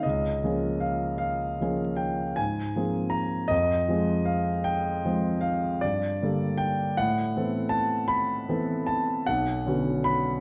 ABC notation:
X:1
M:9/8
L:1/8
Q:3/8=52
K:Dblyd
V:1 name="Grand piano"
e2 f f2 g a2 b | e2 f g2 f =d2 g | _g2 =a =b2 a ^f2 b |]
V:2 name="Grand piano"
D,, [F,B,DA]3 [F,B,DA]2 A,, [F,B,CA]2 | F,, [F,A,CA]3 [F,A,CA]2 G,, [=D,G,B,=A]2 | =A,, [=E,=B,C=A]3 [E,B,CA]2 =B,,, [=D,B,^C^F]2 |]